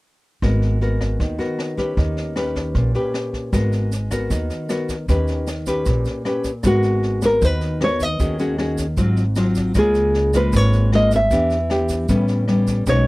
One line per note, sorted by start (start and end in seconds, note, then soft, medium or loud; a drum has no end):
0.42 1.16 G#1 medium
0.42 1.18 G#3 soft
0.42 0.78 B3 soft
0.42 0.78 F#4 soft
0.42 0.79 A#4 medium
0.42 kick soft
0.42 cross-stick soft
0.42 snare soft
0.62 snare soft
0.81 1.36 B3 soft
0.81 1.36 F#4 soft
0.81 1.37 A#4 medium
0.81 snare soft
1.01 kick soft
1.01 cross-stick soft
1.01 snare soft
1.20 1.38 D#2 medium
1.20 1.96 D#3 soft
1.20 kick medium
1.20 snare soft
1.38 1.75 B3 medium
1.38 1.75 F#4 medium
1.38 1.75 A#4 medium
1.38 snare soft
1.59 cross-stick medium
1.59 snare soft
1.77 2.33 C#4 medium
1.77 2.33 G4 medium
1.77 2.33 B4 medium
1.77 kick soft
1.77 snare soft
1.97 2.71 D#2 medium
1.97 2.73 D#3 soft
1.97 kick medium
1.97 snare soft
2.17 snare soft
2.36 2.91 C#4 medium
2.36 2.92 G4 soft
2.36 2.92 B4 medium
2.36 cross-stick medium
2.36 snare soft
2.55 kick soft
2.55 snare soft
2.75 2.93 A#1 medium
2.75 3.51 A#2 medium
2.75 kick medium
2.75 snare soft
2.94 3.50 C#4 medium
2.94 3.50 G4 medium
2.94 3.50 B4 medium
2.94 snare soft
3.14 cross-stick medium
3.14 snare soft
3.33 kick soft
3.33 snare soft
3.53 4.27 G#1 medium
3.53 4.29 G#3 soft
3.53 3.92 B3 soft
3.53 3.92 F#4 soft
3.53 3.92 A#4 medium
3.53 kick medium
3.53 cross-stick medium
3.53 snare soft
3.53 shaker medium
3.72 snare soft
3.72 shaker soft
3.92 snare soft
3.92 shaker medium
4.11 4.67 B3 medium
4.11 4.67 F#4 medium
4.11 4.67 A#4 medium
4.11 kick soft
4.11 cross-stick medium
4.11 snare soft
4.11 shaker medium
4.30 4.49 D#2 medium
4.30 5.06 D#3 soft
4.30 kick medium
4.30 snare soft
4.30 shaker medium
4.50 snare soft
4.50 shaker soft
4.69 4.95 B3 soft
4.69 4.95 F#4 medium
4.69 4.95 A#4 medium
4.69 cross-stick medium
4.69 snare soft
4.69 shaker medium
4.89 kick soft
4.89 snare soft
4.89 shaker medium
5.08 5.82 D#2 medium
5.08 5.84 D#3 soft
5.08 5.47 C#4 medium
5.08 5.48 G4 soft
5.08 5.48 B4 medium
5.08 kick soft
5.08 snare soft
5.08 shaker medium
5.27 snare soft
5.27 shaker soft
5.47 cross-stick medium
5.47 snare soft
5.47 shaker soft
5.66 6.22 C#4 medium
5.66 6.22 G4 medium
5.66 6.23 B4 medium
5.66 kick soft
5.66 snare soft
5.66 shaker medium
5.86 6.04 A#1 medium
5.86 6.62 A#2 soft
5.86 kick medium
5.86 snare soft
5.86 shaker medium
6.05 snare soft
6.05 shaker soft
6.25 6.50 C#4 medium
6.25 6.50 G4 soft
6.25 6.51 B4 medium
6.25 cross-stick medium
6.25 snare soft
6.44 kick soft
6.44 snare soft
6.44 shaker medium
6.63 7.38 G#1 medium
6.63 7.40 G#3 medium
6.63 7.20 B3 soft
6.63 7.20 F#4 soft
6.63 7.25 F#4 medium
6.63 7.20 A#4 medium
6.63 kick medium
6.63 cross-stick medium
6.63 snare soft
6.63 shaker medium
6.83 snare soft
6.83 shaker soft
7.03 snare soft
7.22 7.78 B3 medium
7.22 7.78 F#4 soft
7.22 7.45 A#4 medium
7.22 kick soft
7.22 cross-stick medium
7.22 snare soft
7.22 shaker medium
7.41 8.16 D#2 loud
7.41 8.18 D#3 medium
7.41 7.83 B4 medium
7.41 kick medium
7.41 snare soft
7.41 shaker medium
7.61 snare soft
7.61 shaker soft
7.81 8.07 B3 soft
7.81 8.07 F#4 soft
7.81 8.07 A#4 medium
7.81 8.03 C#5 medium
7.81 cross-stick medium
7.81 snare soft
8.00 9.18 D#5 medium
8.00 kick soft
8.00 snare soft
8.00 shaker medium
8.20 8.94 D#2 medium
8.20 8.96 D#3 medium
8.20 8.36 C#4 medium
8.20 8.36 F#4 medium
8.20 8.37 G#4 medium
8.20 kick medium
8.20 snare soft
8.20 shaker medium
8.39 8.56 C#4 medium
8.39 8.56 F#4 medium
8.39 8.56 G#4 medium
8.39 snare soft
8.39 shaker soft
8.58 8.85 C#4 soft
8.58 8.85 F#4 soft
8.58 8.85 G#4 medium
8.58 cross-stick medium
8.58 snare soft
8.78 kick soft
8.78 snare soft
8.78 shaker medium
8.97 9.71 G#1 medium
8.97 9.73 G#2 medium
8.97 9.23 F#3 medium
8.97 9.23 C4 medium
8.97 9.23 F4 medium
8.97 kick medium
8.97 snare soft
8.97 shaker medium
9.16 snare soft
9.16 shaker soft
9.36 9.72 F#3 medium
9.36 9.73 C4 soft
9.36 9.73 F4 medium
9.36 cross-stick medium
9.36 snare soft
9.36 shaker medium
9.55 kick soft
9.55 snare soft
9.55 shaker medium
9.74 10.49 C#2 medium
9.74 10.51 C#3 medium
9.74 10.31 G#3 soft
9.74 10.31 A#3 soft
9.74 10.31 F4 medium
9.74 10.37 G#4 medium
9.74 kick medium
9.74 cross-stick medium
9.74 snare soft
9.74 shaker medium
9.94 snare soft
9.94 shaker soft
10.14 snare soft
10.33 10.89 G#3 medium
10.33 10.89 A#3 medium
10.33 10.90 F4 medium
10.33 10.56 B4 medium
10.33 kick soft
10.33 cross-stick medium
10.33 snare soft
10.33 shaker medium
10.53 11.27 G#1 medium
10.53 11.29 G#2 medium
10.53 10.95 C#5 loud
10.53 kick medium
10.53 snare soft
10.53 shaker medium
10.73 snare soft
10.73 shaker soft
10.92 11.19 G#3 soft
10.92 11.19 A#3 medium
10.92 11.19 F4 medium
10.92 11.12 D#5 medium
10.92 cross-stick medium
10.92 snare soft
11.11 kick soft
11.11 snare soft
11.11 shaker medium
11.16 12.26 E5 medium
11.31 12.05 E2 medium
11.31 12.07 E3 medium
11.31 11.56 B3 medium
11.31 11.56 D4 medium
11.31 11.57 G4 medium
11.31 kick medium
11.31 snare soft
11.31 shaker medium
11.50 snare soft
11.50 shaker soft
11.70 12.08 B3 soft
11.70 12.08 D4 medium
11.70 12.08 G4 medium
11.70 cross-stick medium
11.70 snare soft
11.89 kick soft
11.89 snare soft
11.89 shaker medium
12.09 12.83 A1 medium
12.09 12.85 A2 soft
12.09 12.45 G3 soft
12.09 12.45 B3 medium
12.09 12.45 C#4 medium
12.09 kick medium
12.09 snare soft
12.09 shaker medium
12.28 snare soft
12.28 shaker soft
12.48 12.84 G3 soft
12.48 12.84 B3 soft
12.48 12.84 C#4 soft
12.48 cross-stick medium
12.48 snare soft
12.67 kick soft
12.67 snare soft
12.67 shaker medium
12.86 13.07 B1 medium
12.86 13.07 B2 medium
12.86 13.07 G#3 soft
12.86 13.07 C#4 medium
12.86 13.07 D#4 medium
12.86 13.06 C#5 medium
12.86 kick medium
12.86 cross-stick medium
12.86 snare soft
12.86 shaker medium